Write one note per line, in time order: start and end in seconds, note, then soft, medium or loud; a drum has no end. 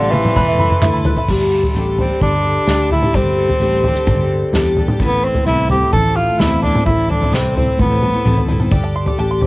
0.00 0.25 A1 loud
0.00 0.13 A2 medium
0.00 0.13 D3 medium
0.00 0.14 F3 medium
0.00 0.11 G3 medium
0.00 0.12 C4 medium
0.00 0.13 G4 loud
0.00 0.14 A4 loud
0.00 0.36 A4 medium
0.00 0.12 F5 medium
0.00 0.24 A5 medium
0.00 0.39 C6 medium
0.11 1.05 E3 medium
0.11 0.24 G3 medium
0.11 0.25 C4 medium
0.11 0.24 G4 medium
0.11 0.23 A4 medium
0.11 0.36 F5 medium
0.11 high tom medium
0.11 shaker medium
0.24 0.36 G3 soft
0.24 0.36 C4 soft
0.24 0.36 G4 soft
0.24 0.36 A4 medium
0.24 0.36 A5 medium
0.24 mid tom medium
0.24 shaker soft
0.36 0.71 E1 medium
0.36 0.59 E3 medium
0.36 0.57 A3 medium
0.36 0.58 E4 medium
0.36 0.60 A4 medium
0.36 0.70 B4 medium
0.36 0.60 B4 medium
0.36 1.02 B5 medium
0.36 kick loud
0.36 mid tom medium
0.36 shaker medium
0.48 0.81 E5 medium
0.59 0.70 A3 medium
0.59 0.71 E4 medium
0.59 0.71 A4 medium
0.59 0.70 B4 medium
0.59 0.92 B5 medium
0.59 mid tom medium
0.59 shaker loud
0.70 0.81 E4 soft
0.70 0.82 A4 medium
0.70 0.82 B4 medium
0.70 1.04 B4 medium
0.70 mid tom medium
0.70 shaker soft
0.81 1.18 D2 medium
0.81 1.05 E3 medium
0.81 1.03 A3 medium
0.81 1.04 E4 medium
0.81 1.05 A4 loud
0.81 1.06 B4 loud
0.81 1.16 E5 medium
0.81 clap medium
0.81 mid tom loud
0.81 shaker medium
0.94 1.28 B5 medium
1.05 1.17 A3 medium
1.05 1.17 E4 medium
1.05 1.17 A4 medium
1.05 1.29 B4 medium
1.05 1.15 B4 medium
1.05 floor tom loud
1.05 shaker loud
1.16 1.29 E4 soft
1.16 1.29 A4 medium
1.16 1.28 B4 medium
1.16 1.29 E5 medium
1.16 floor tom medium
1.16 shaker soft
1.28 1.64 G1 medium
1.28 1.63 G3 medium
1.28 1.64 A3 medium
1.28 1.64 D4 medium
1.28 1.63 G4 medium
1.28 1.62 A4 medium
1.28 kick medium
1.28 floor tom medium
1.28 crash medium
1.54 1.76 A4 soft
1.63 1.74 D4 soft
1.63 1.75 G4 soft
1.63 1.75 A4 medium
1.63 floor tom medium
1.74 2.10 A1 medium
1.74 1.98 G3 medium
1.74 1.96 A3 medium
1.74 1.97 D4 medium
1.74 1.98 G4 medium
1.74 1.99 A4 medium
1.97 2.09 A3 soft
1.97 2.20 C4 medium
1.97 2.10 D4 soft
1.97 2.09 G4 soft
1.97 2.08 A4 medium
1.97 floor tom medium
2.09 2.34 D4 soft
2.09 2.33 G4 soft
2.09 2.31 A4 soft
2.21 2.57 G1 medium
2.21 3.15 D3 medium
2.21 2.87 D4 medium
2.21 2.46 A4 medium
2.21 kick medium
2.21 floor tom medium
2.21 mid tom medium
2.32 2.66 D4 soft
2.32 2.67 G4 soft
2.32 2.67 A4 soft
2.46 2.69 A4 soft
2.67 3.03 D2 medium
2.67 2.90 G3 medium
2.67 2.89 A3 medium
2.67 2.89 D4 medium
2.67 2.90 G4 medium
2.67 2.91 A4 medium
2.67 snare medium
2.67 floor tom medium
2.90 3.02 A3 medium
2.90 3.02 D4 medium
2.90 3.17 E4 medium
2.90 3.02 G4 medium
2.90 3.00 A4 medium
2.90 floor tom medium
3.01 3.13 D4 soft
3.01 3.14 G4 soft
3.01 3.14 A4 soft
3.01 mid tom medium
3.13 3.50 G1 medium
3.13 3.49 G3 medium
3.13 3.49 A3 medium
3.13 4.78 C4 medium
3.13 3.49 D4 medium
3.13 3.49 G4 medium
3.13 3.47 A4 medium
3.13 kick medium
3.13 floor tom medium
3.38 3.61 A4 medium
3.48 3.60 D4 soft
3.48 3.61 G4 soft
3.48 3.60 A4 soft
3.48 floor tom medium
3.60 3.96 A1 medium
3.60 3.84 G3 medium
3.60 3.83 A3 medium
3.60 3.84 D4 medium
3.60 3.85 G4 medium
3.60 3.85 A4 medium
3.84 3.96 A3 medium
3.84 3.97 D4 medium
3.84 3.96 E4 soft
3.84 3.96 G4 medium
3.84 3.94 A4 medium
3.84 floor tom medium
3.96 4.20 D4 soft
3.96 4.19 G4 soft
3.96 4.18 A4 medium
4.07 4.43 G1 medium
4.07 5.00 D3 medium
4.07 4.30 A4 medium
4.07 kick medium
4.07 floor tom medium
4.07 mid tom medium
4.19 4.54 D4 soft
4.19 4.55 G4 soft
4.19 4.54 A4 soft
4.31 4.54 A4 soft
4.53 4.89 E2 medium
4.53 4.77 G3 medium
4.53 4.76 A3 medium
4.53 4.77 D4 medium
4.53 4.77 G4 medium
4.53 4.78 A4 medium
4.53 snare medium
4.53 floor tom medium
4.77 4.89 A3 medium
4.77 4.89 D4 medium
4.77 4.89 G4 medium
4.77 4.88 A4 medium
4.77 floor tom medium
4.88 5.01 D4 soft
4.88 5.01 G4 soft
4.88 5.01 A4 soft
4.88 mid tom medium
5.00 5.36 A1 medium
5.00 5.36 A2 medium
5.00 5.36 E3 medium
5.00 5.27 B3 medium
5.00 5.36 B3 medium
5.00 5.36 C4 medium
5.00 5.35 E4 medium
5.00 5.34 A4 medium
5.00 kick medium
5.00 floor tom medium
5.25 5.46 C4 medium
5.25 6.84 B4 medium
5.35 5.46 B3 soft
5.35 5.46 C4 soft
5.35 5.47 E4 soft
5.35 5.47 A4 soft
5.35 floor tom medium
5.46 5.83 C2 medium
5.46 5.70 A2 medium
5.46 5.70 E3 medium
5.46 6.40 A3 medium
5.46 5.70 B3 medium
5.46 5.69 C4 medium
5.46 5.68 E4 medium
5.46 5.70 E4 medium
5.46 5.71 A4 medium
5.70 6.05 C4 medium
5.70 6.05 E4 medium
5.70 5.92 G4 medium
5.70 6.04 A4 medium
5.70 floor tom medium
5.93 6.29 A1 medium
5.93 6.84 E3 medium
5.93 6.16 E4 medium
5.93 6.18 A4 medium
5.93 kick medium
5.93 floor tom medium
5.93 mid tom medium
6.05 6.40 C4 soft
6.05 6.40 E4 soft
6.05 6.40 A4 soft
6.16 7.09 E4 soft
6.16 6.41 F4 medium
6.39 6.75 E2 medium
6.39 6.63 A2 medium
6.39 6.63 E3 medium
6.39 8.26 A3 medium
6.39 6.61 B3 medium
6.39 6.62 C4 medium
6.39 6.62 E4 medium
6.39 6.63 E4 medium
6.39 6.64 A4 medium
6.39 snare medium
6.39 floor tom medium
6.62 6.74 B3 soft
6.62 6.75 C4 medium
6.62 6.84 D4 medium
6.62 6.74 E4 medium
6.62 6.73 A4 medium
6.62 floor tom medium
6.74 6.87 B3 soft
6.74 6.86 C4 soft
6.74 6.86 E4 soft
6.74 6.86 A4 soft
6.74 mid tom medium
6.86 7.22 A1 medium
6.86 7.21 A2 medium
6.86 7.21 E3 medium
6.86 7.21 C4 medium
6.86 7.08 E4 medium
6.86 7.20 E4 medium
6.86 7.19 A4 medium
6.86 kick medium
6.86 floor tom medium
7.09 7.36 D4 medium
7.09 7.32 A4 medium
7.09 floor tom medium
7.20 7.32 B3 soft
7.20 7.32 C4 soft
7.20 7.32 E4 soft
7.20 7.32 A4 soft
7.20 floor tom medium
7.32 7.68 C2 medium
7.32 7.56 A2 medium
7.32 7.56 E3 medium
7.32 7.56 B3 medium
7.32 7.55 C4 medium
7.32 7.56 C4 medium
7.32 7.55 E4 medium
7.32 7.56 A4 medium
7.32 snare medium
7.56 7.90 C4 soft
7.56 7.78 C4 medium
7.56 7.89 E4 medium
7.56 7.88 A4 medium
7.56 floor tom medium
7.79 8.15 A1 medium
7.79 8.73 A2 medium
7.79 8.46 B3 medium
7.79 8.03 A4 medium
7.79 kick medium
7.79 floor tom medium
7.79 mid tom medium
7.89 8.14 B3 soft
7.89 8.13 C4 soft
7.89 8.13 E4 soft
7.89 8.11 A4 soft
8.02 8.25 A4 soft
8.02 mid tom medium
8.13 8.24 B3 soft
8.13 8.25 C4 soft
8.13 8.25 E4 soft
8.13 8.25 A4 soft
8.25 8.46 A1 medium
8.25 8.48 A2 medium
8.25 8.49 E3 medium
8.25 8.47 B3 medium
8.25 8.48 C4 medium
8.25 8.49 E4 medium
8.25 8.49 A4 medium
8.25 floor tom medium
8.25 mid tom medium
8.37 floor tom medium
8.48 8.70 G1 medium
8.48 8.60 B3 medium
8.48 8.60 C4 medium
8.48 8.60 E4 medium
8.48 8.59 A4 medium
8.48 floor tom medium
8.60 8.70 B3 soft
8.60 8.72 C4 soft
8.60 8.72 E4 soft
8.60 8.72 A4 soft
8.60 mid tom medium
8.71 9.08 G1 medium
8.71 9.07 G3 medium
8.71 9.07 D4 medium
8.71 9.07 G4 medium
8.71 9.05 A4 medium
8.71 9.06 D5 medium
8.71 kick medium
8.71 floor tom medium
8.84 8.95 A5 medium
8.96 9.30 C6 medium
9.06 9.18 D4 soft
9.06 9.18 G4 soft
9.06 9.18 A4 soft
9.06 9.41 D5 medium
9.06 floor tom medium
9.18 9.47 A1 medium
9.18 9.40 G3 medium
9.18 9.41 D4 medium
9.18 9.42 G4 medium
9.18 9.42 A4 medium
9.18 9.47 A5 medium
9.31 9.47 C6 medium
9.41 9.47 G3 soft
9.41 9.47 C4 medium
9.41 9.47 D4 soft
9.41 9.47 G4 medium
9.41 9.47 A4 medium
9.41 9.47 D5 medium
9.41 floor tom medium